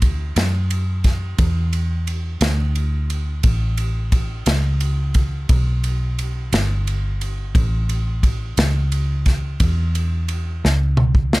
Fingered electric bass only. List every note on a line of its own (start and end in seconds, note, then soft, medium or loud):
0.00 0.34 D2 medium
0.36 1.36 F#2 medium
1.39 2.39 E2 medium
2.41 3.41 D2 medium
3.44 4.44 A1 medium
4.47 5.47 C#2 medium
5.50 6.49 B1 medium
6.52 7.52 G1 medium
7.55 8.55 A1 medium
8.58 9.58 C#2 medium
9.60 10.60 E2 medium
10.65 11.40 C#2 medium